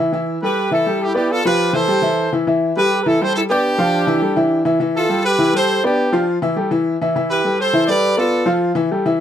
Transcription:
0.00 0.10 E5 medium
0.13 0.37 E3 medium
0.13 0.37 E4 medium
0.13 0.37 E5 medium
0.42 0.66 G3 medium
0.42 0.66 G4 medium
0.42 0.70 G4 medium
0.42 0.67 A4 medium
0.42 0.70 B4 medium
0.71 0.83 E3 medium
0.71 0.84 E4 medium
0.71 0.99 E4 medium
0.71 0.99 A4 medium
0.71 0.84 E5 medium
0.86 1.10 G3 medium
0.86 1.10 G4 medium
0.86 1.11 A4 medium
1.02 1.15 E4 medium
1.02 1.15 G4 medium
1.15 1.39 B3 medium
1.15 1.29 E4 medium
1.15 1.29 G4 medium
1.15 1.39 B4 medium
1.15 1.39 D5 medium
1.30 1.45 F4 medium
1.30 1.45 A4 loud
1.45 1.69 F3 medium
1.45 1.69 F4 medium
1.45 1.72 G4 medium
1.45 1.72 B4 loud
1.45 1.69 F5 medium
1.73 1.85 E3 medium
1.73 1.86 E4 medium
1.73 2.33 A4 medium
1.73 2.32 C5 loud
1.73 1.86 E5 medium
1.88 2.00 G3 medium
1.88 2.00 G4 medium
1.88 2.00 A4 medium
2.02 2.26 E3 medium
2.02 2.27 E4 medium
2.02 2.27 E5 medium
2.33 2.44 E3 medium
2.33 2.45 E4 medium
2.33 2.45 E5 medium
2.47 2.71 E3 medium
2.47 2.71 E4 medium
2.47 2.72 E5 medium
2.77 3.00 G3 medium
2.77 3.00 G4 medium
2.77 3.01 G4 medium
2.77 3.01 A4 medium
2.77 3.00 B4 loud
3.02 3.18 E3 medium
3.02 3.18 E4 medium
3.02 3.20 A4 medium
3.02 3.06 B4 medium
3.02 3.18 E5 medium
3.07 3.21 E4 medium
3.21 3.45 G3 medium
3.21 3.45 G4 medium
3.21 3.35 A4 medium
3.21 3.45 A4 medium
3.21 3.35 C5 loud
3.36 3.42 E4 medium
3.36 3.42 A4 medium
3.50 3.73 B3 medium
3.50 4.63 D4 medium
3.50 4.62 G4 loud
3.50 3.74 B4 medium
3.50 3.74 D5 medium
3.78 4.02 F3 medium
3.78 4.03 F4 medium
3.78 4.03 F5 medium
4.07 4.19 E3 loud
4.07 4.19 E4 loud
4.07 4.20 E5 medium
4.22 4.34 G3 medium
4.22 4.34 G4 medium
4.22 4.34 A4 medium
4.36 4.61 E3 medium
4.36 4.60 E4 medium
4.36 4.61 E5 medium
4.65 4.78 E3 medium
4.65 4.78 E4 medium
4.65 4.78 E5 medium
4.80 5.04 E3 medium
4.80 5.05 E4 medium
4.80 5.05 E5 medium
4.96 5.24 F4 medium
4.96 5.23 A4 medium
5.09 5.34 G3 medium
5.09 5.34 G4 medium
5.09 5.34 A4 medium
5.25 5.53 G4 medium
5.25 5.52 B4 loud
5.39 5.51 E3 medium
5.39 5.51 E4 medium
5.39 5.51 E5 medium
5.53 5.78 G3 medium
5.53 5.78 G4 medium
5.53 5.78 A4 medium
5.53 5.83 A4 medium
5.53 5.82 C5 loud
5.84 6.08 B3 medium
5.84 6.25 D4 medium
5.84 6.25 G4 medium
5.84 6.08 B4 medium
5.84 6.08 D5 medium
6.12 6.36 F3 medium
6.12 6.37 F4 loud
6.12 6.37 F5 medium
6.42 6.54 E3 medium
6.42 6.54 E4 medium
6.42 6.54 E5 medium
6.56 6.68 G3 medium
6.56 6.68 G4 medium
6.56 6.69 A4 medium
6.71 6.95 E3 medium
6.71 6.95 E4 medium
6.71 6.95 E5 medium
7.01 7.13 E3 medium
7.01 7.13 E4 medium
7.01 7.13 E5 medium
7.16 7.39 E3 medium
7.16 7.39 E4 medium
7.16 7.40 E5 medium
7.30 7.58 G4 medium
7.30 7.57 B4 medium
7.44 7.68 G3 medium
7.44 7.69 G4 medium
7.44 7.69 A4 medium
7.59 7.87 A4 medium
7.59 7.86 C5 loud
7.73 7.85 E3 medium
7.73 7.86 E4 medium
7.73 7.86 E5 medium
7.87 8.12 G3 medium
7.87 8.12 G4 medium
7.87 8.13 A4 medium
7.87 8.16 B4 medium
7.87 8.15 D5 loud
8.17 8.41 B3 medium
8.17 8.59 F4 medium
8.17 8.58 A4 medium
8.17 8.42 B4 medium
8.17 8.42 D5 medium
8.46 8.70 F3 loud
8.46 8.70 F4 loud
8.46 8.71 F5 medium
8.75 8.87 E3 loud
8.75 8.88 E4 medium
8.75 8.88 E5 loud
8.91 9.03 G3 medium
8.91 9.03 G4 medium
8.91 9.03 A4 medium
9.06 9.20 E3 medium
9.06 9.20 E4 medium
9.06 9.20 E5 medium

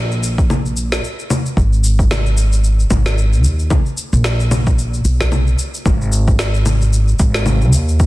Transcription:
0.00 0.98 A#1 medium
0.12 shaker soft
0.23 shaker medium
0.38 kick loud
0.38 shaker soft
0.50 low conga medium
0.50 shaker soft
0.66 shaker soft
0.77 shaker medium
0.92 snare medium
0.92 shaker soft
1.04 shaker soft
1.19 shaker soft
1.30 low conga medium
1.30 shaker medium
1.46 shaker soft
1.57 2.85 G#1 loud
1.57 kick loud
1.57 shaker soft
1.73 shaker soft
1.84 shaker medium
1.99 kick medium
1.99 shaker soft
2.11 snare medium
2.11 low conga medium
2.11 shaker soft
2.26 shaker soft
2.37 shaker medium
2.52 shaker soft
2.64 shaker soft
2.79 shaker soft
2.90 3.44 G#1 medium
2.90 kick loud
2.90 low conga medium
2.90 shaker medium
3.06 snare medium
3.06 shaker soft
3.18 shaker soft
3.33 shaker soft
3.44 3.79 D#2 medium
3.44 shaker medium
3.59 shaker soft
3.70 kick loud
3.70 low conga medium
3.70 shaker soft
3.86 shaker soft
3.97 shaker medium
4.13 5.04 A#1 medium
4.13 shaker soft
4.24 snare medium
4.24 shaker soft
4.40 shaker soft
4.51 low conga medium
4.51 shaker medium
4.67 kick medium
4.67 shaker soft
4.78 shaker soft
4.94 shaker soft
5.05 5.53 B1 medium
5.05 shaker medium
5.20 kick medium
5.20 snare medium
5.20 shaker soft
5.32 low conga medium
5.32 shaker soft
5.47 shaker soft
5.59 shaker medium
5.74 shaker soft
5.86 7.14 G#1 medium
5.86 kick loud
5.86 low conga medium
5.86 shaker soft
6.01 shaker soft
6.12 shaker medium
6.28 kick loud
6.28 shaker soft
6.39 snare medium
6.39 shaker soft
6.54 shaker soft
6.66 low conga medium
6.66 shaker medium
6.81 shaker soft
6.93 shaker soft
7.08 shaker soft
7.19 7.73 G#1 loud
7.19 kick loud
7.19 shaker medium
7.34 snare medium
7.34 shaker soft
7.46 low conga medium
7.46 shaker soft
7.61 shaker soft
7.73 8.06 D#2 medium
7.73 shaker medium
7.88 shaker soft
8.00 kick loud
8.00 shaker soft

